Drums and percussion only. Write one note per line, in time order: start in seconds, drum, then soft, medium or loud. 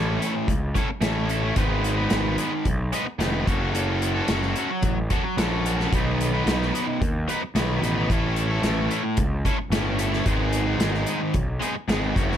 0.22 closed hi-hat medium
0.48 kick medium
0.48 closed hi-hat medium
0.75 kick medium
0.75 closed hi-hat medium
1.02 snare loud
1.02 closed hi-hat medium
1.29 closed hi-hat medium
1.56 kick loud
1.56 closed hi-hat medium
1.84 closed hi-hat medium
2.10 snare loud
2.10 closed hi-hat medium
2.38 closed hi-hat medium
2.65 kick medium
2.65 closed hi-hat medium
2.93 closed hi-hat medium
3.20 snare medium
3.20 closed hi-hat medium
3.47 kick medium
3.47 closed hi-hat medium
3.75 closed hi-hat medium
4.02 closed hi-hat medium
4.28 snare medium
4.28 closed hi-hat medium
4.42 snare soft
4.56 closed hi-hat medium
4.83 kick loud
4.83 closed hi-hat medium
5.10 kick medium
5.10 closed hi-hat medium
5.38 snare medium
5.38 closed hi-hat medium
5.66 closed hi-hat medium
5.80 snare soft
5.93 kick medium
5.93 closed hi-hat medium
6.21 closed hi-hat medium
6.47 snare medium
6.47 closed hi-hat medium
6.62 snare soft
6.75 closed hi-hat medium
7.02 kick loud
7.02 closed hi-hat medium
7.29 closed hi-hat medium
7.56 snare loud
7.56 closed hi-hat medium
7.83 closed hi-hat medium
8.10 kick loud
8.10 closed hi-hat medium
8.36 closed hi-hat medium
8.63 snare medium
8.63 closed hi-hat medium
8.91 closed hi-hat medium
9.17 kick loud
9.17 closed hi-hat medium
9.45 kick medium
9.45 closed hi-hat medium
9.72 snare medium
9.72 closed hi-hat medium
9.99 closed hi-hat medium
10.13 snare soft
10.26 kick medium
10.26 closed hi-hat medium
10.53 closed hi-hat medium
10.80 snare medium
10.80 closed hi-hat medium
10.94 snare soft
11.07 closed hi-hat medium
11.34 kick loud
11.34 closed hi-hat medium
11.62 closed hi-hat medium
11.89 snare medium
11.89 closed hi-hat medium
12.16 kick loud
12.16 closed hi-hat medium
12.32 snare soft